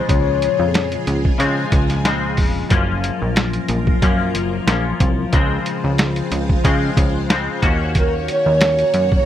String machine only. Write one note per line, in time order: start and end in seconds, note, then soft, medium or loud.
0.00 7.59 A#2 medium
0.00 2.68 G#3 medium
0.00 2.68 F4 medium
0.00 2.68 G#4 medium
2.72 5.31 F3 medium
2.72 5.31 F4 medium
2.72 5.31 A#4 medium
5.32 7.60 G#3 medium
5.32 7.60 F4 medium
5.32 7.60 C5 medium
7.61 9.26 D#3 medium
7.61 9.26 A#3 medium
7.61 9.26 F#4 medium
7.61 9.26 C#5 medium